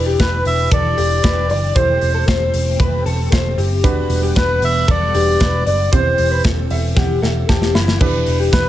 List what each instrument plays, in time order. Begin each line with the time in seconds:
Already playing: picked electric bass E1, string machine E3 D4 G4, upright piano E4 G4 B4 D5
0.06 clean electric guitar G4
0.19 picked electric bass E1, clean electric guitar B4, melodica B4, kick, snare, hi-hat pedal, ride
0.45 picked electric bass E1, melodica E5, open hi-hat
0.71 picked electric bass E1, clean electric guitar A4, melodica D5, kick, hi-hat pedal, ride
0.97 picked electric bass E1, clean electric guitar G4, open hi-hat
1.23 picked electric bass E1, clean electric guitar B4, kick, snare, hi-hat pedal, ride
1.49 picked electric bass F#1, clean electric guitar D5, melodica D5, open hi-hat
1.75 picked electric bass E1, string machine A3 C4, upright piano E4 G4 A4 C5, clean electric guitar C5, melodica C5, kick, hi-hat pedal, ride
2.01 picked electric bass E1, open hi-hat
2.14 clean electric guitar A4
2.28 picked electric bass E1, clean electric guitar C5, kick, snare, hi-hat pedal, ride
2.54 picked electric bass E1, open hi-hat
2.80 picked electric bass E1, clean electric guitar B4, kick, hi-hat pedal, ride
3.06 picked electric bass E1, clean electric guitar A4, open hi-hat
3.32 picked electric bass E1, clean electric guitar C5, kick, snare, hi-hat pedal, ride
3.58 picked electric bass F#1, clean electric guitar G4, open hi-hat
3.83 picked electric bass E1, string machine G3 B3 F#5, upright piano D4 F#4 G4 B4, clean electric guitar B4, kick, hi-hat pedal, ride
4.10 picked electric bass E1, open hi-hat
4.23 clean electric guitar G4
4.36 picked electric bass E1, clean electric guitar B4, melodica B4, kick, snare, hi-hat pedal, ride
4.62 picked electric bass E1, melodica E5, open hi-hat
4.88 picked electric bass E1, clean electric guitar A4, melodica D5, kick, hi-hat pedal, ride
5.14 picked electric bass E1, upright piano D4 F#4 G4 B4, clean electric guitar G4, open hi-hat
5.40 picked electric bass E1, clean electric guitar B4, kick, snare, hi-hat pedal, ride
5.66 picked electric bass F#1, clean electric guitar D5, melodica D5, open hi-hat
5.92 picked electric bass E1, string machine E3 C4 G4, upright piano C4 E4 G4 C5, clean electric guitar C5, melodica C5, kick, hi-hat pedal, ride
6.18 picked electric bass E1, open hi-hat
6.31 clean electric guitar B4
6.44 picked electric bass E1, clean electric guitar A4, kick, snare, ride
6.71 picked electric bass E1, upright piano E5, open hi-hat
6.96 picked electric bass E1, clean electric guitar G4, upright piano F#5, kick, snare
7.22 picked electric bass E1, clean electric guitar A4, upright piano E5, snare
7.49 picked electric bass E1, clean electric guitar G4, upright piano A5, kick, snare
7.62 snare
7.75 picked electric bass F#1, clean electric guitar E4, upright piano B5, snare
7.88 snare
8.01 picked electric bass E1, string machine E3 D4, upright piano D4 E4 G4 B4, clean electric guitar B4, kick, crash
8.26 picked electric bass E1, open hi-hat
8.40 clean electric guitar G4
8.52 picked electric bass E1, clean electric guitar B4, melodica B4, kick, snare, hi-hat pedal, ride